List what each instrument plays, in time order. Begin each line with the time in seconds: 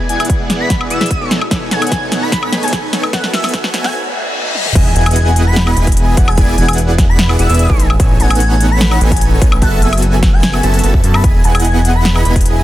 Already playing: ambient pad G#3 E4 F#4 D5, riser
0.09 supersaw synth B3 E4 G#4 D5 F#5, digital synth lead G#5, closed hi-hat
0.20 closed hi-hat, high woodblock
0.25 closed hi-hat
0.30 kick, closed hi-hat
0.50 snare, closed hi-hat
0.60 digital synth lead B5
0.70 kick, snare, closed hi-hat
0.81 high woodblock
0.90 supersaw synth B3 E4 G#4 D5 F#5, digital synth lead E6, closed hi-hat
1.01 supersaw synth B3 E4 G#4 D5 E5, snare, closed hi-hat
1.06 closed hi-hat
1.11 kick, closed hi-hat
1.21 supersaw synth B3 D#4 A4 C#5 G#5
1.31 ambient pad A3 D#4 B4 C#5 G#5, snare, closed hi-hat
1.41 high woodblock
1.51 supersaw synth B3 D#4 A4 C#5 G#5, kick, snare, closed hi-hat
1.71 supersaw synth B3 D#4 A4 C#5 F#5, digital synth lead G#5, snare, closed hi-hat
1.82 closed hi-hat, high woodblock
1.87 closed hi-hat
1.92 kick, snare, closed hi-hat
2.12 snare, closed hi-hat
2.22 digital synth lead B5
2.32 digital synth lead B5, kick, snare, closed hi-hat
2.43 digital synth lead B5, high woodblock
2.52 supersaw synth B3 D#4 A4 C#5 G#5, snare, closed hi-hat
2.63 digital synth lead G#5, closed hi-hat
2.68 closed hi-hat
2.73 kick, snare, closed hi-hat
2.93 supersaw synth B3 D#4 A4 C#5 G#5, snare, closed hi-hat
3.03 high woodblock
3.13 supersaw synth B3 F#4 A4 E5 A5, ambient pad F#4 B4 E5, digital synth lead F#5, kick, snare, closed hi-hat
3.24 snare
3.33 supersaw synth B3 F#4 A4 E5 G#5, digital synth lead E5, snare, closed hi-hat
3.44 snare, closed hi-hat, high woodblock
3.49 closed hi-hat
3.54 kick, snare, closed hi-hat
3.64 snare
3.74 snare, closed hi-hat
3.84 digital synth lead G#5, snare
3.94 reverse cymbal
4.55 high tom
4.66 mid tom
4.75 analog synth bass E1, supersaw synth B3 E4 G#4 D#5 G#5, digital synth lead G#5, kick, closed hi-hat, crash, impact
4.96 analog synth bass E1, supersaw synth B3 E4 G#4 D#5 F#5, digital synth lead F#5 G#5, closed hi-hat
5.06 closed hi-hat, high woodblock
5.11 closed hi-hat
5.16 closed hi-hat
5.36 closed hi-hat
5.47 digital synth lead B5
5.56 digital synth lead B5, snare, closed hi-hat
5.67 digital synth lead B5, high woodblock
5.77 analog synth bass E1, supersaw synth B3 E4 G#4 D#5 G#5, digital synth lead G#5, closed hi-hat
5.87 kick, closed hi-hat
5.92 closed hi-hat
5.97 closed hi-hat
6.17 analog synth bass E1, supersaw synth B3 E4 G#4 D5 F#5, digital synth lead F#5, kick, closed hi-hat
6.28 digital synth lead G#5, high woodblock
6.38 analog synth bass E1, supersaw synth B3 E4 G#4 D5 G#5, digital synth lead G#5, kick, closed hi-hat
6.58 analog synth bass E1, supersaw synth B3 E4 G#4 D5 F#5, digital synth lead F#5 G#5, closed hi-hat
6.68 closed hi-hat, high woodblock
6.73 closed hi-hat
6.78 closed hi-hat
6.98 kick, snare, closed hi-hat
7.09 digital synth lead B5
7.19 snare, closed hi-hat
7.29 high woodblock
7.39 analog synth bass E1, supersaw synth B3 E4 G#4 D5 F#5, digital synth lead F#5 E6, closed hi-hat
7.49 analog synth bass E1, supersaw synth B3 E4 G#4 D5 E5, digital synth lead E5, closed hi-hat
7.54 closed hi-hat
7.59 closed hi-hat
7.70 analog synth bass A1, supersaw synth B3 D#4 A4 C#5 G#5, digital synth lead G#5, kick
7.80 closed hi-hat
7.90 high woodblock
8.00 analog synth bass A1, supersaw synth B3 D#4 A4 C#5 G#5, digital synth lead G#5, kick, closed hi-hat
8.20 analog synth bass A1, supersaw synth B3 D#4 A4 C#5 F#5, digital synth lead F#5 G#5, closed hi-hat
8.30 closed hi-hat, high woodblock
8.35 closed hi-hat
8.40 closed hi-hat
8.61 closed hi-hat
8.71 digital synth lead B5
8.81 digital synth lead B5, snare, closed hi-hat
8.91 digital synth lead B5, high woodblock
9.01 analog synth bass A1, supersaw synth B3 D#4 A4 C#5 G#5, digital synth lead G#5, closed hi-hat
9.11 digital synth lead G#5, kick, closed hi-hat
9.17 closed hi-hat
9.21 closed hi-hat
9.42 analog synth bass A1, supersaw synth B3 D#4 A4 C#5 G#5, digital synth lead G#5, kick, closed hi-hat
9.52 high woodblock
9.62 analog synth bass F#1, supersaw synth B3 F#4 A4 E5 A5, digital synth lead F#5 A5, kick, closed hi-hat
9.82 analog synth bass F#1, supersaw synth B3 F#4 A4 E5 G#5, digital synth lead E5 G#5, closed hi-hat
9.93 closed hi-hat, high woodblock
9.98 closed hi-hat
10.02 closed hi-hat
10.23 kick, snare, closed hi-hat
10.33 digital synth lead G#5
10.43 snare, closed hi-hat
10.54 high woodblock
10.63 analog synth bass F#1, supersaw synth B3 F#4 A4 E5 A5, digital synth lead A5, closed hi-hat
10.74 closed hi-hat
10.79 closed hi-hat
10.83 analog synth bass F#1, supersaw synth B3 F#4 A4 E5 A5, digital synth lead A5, closed hi-hat
10.94 analog synth bass F#2, supersaw synth B3 F#4 A4 E5 A5, digital synth lead A5, kick
11.04 analog synth bass F#2, supersaw synth B3 F#4 A4 E5 A5, digital synth lead A5, closed hi-hat
11.14 digital synth lead B5, high woodblock
11.24 analog synth bass E1, supersaw synth B3 E4 G#4 D#5 G#5, digital synth lead G#5, kick, closed hi-hat
11.44 analog synth bass E1, supersaw synth B3 E4 G#4 D#5 F#5, digital synth lead F#5 G#5, closed hi-hat
11.55 closed hi-hat, high woodblock
11.60 closed hi-hat
11.65 closed hi-hat
11.85 closed hi-hat
11.95 digital synth lead B5
12.05 digital synth lead B5, snare, closed hi-hat
12.15 digital synth lead B5, high woodblock
12.25 analog synth bass E1, supersaw synth B3 E4 G#4 D#5 G#5, digital synth lead G#5, closed hi-hat
12.36 kick, closed hi-hat
12.41 closed hi-hat
12.46 closed hi-hat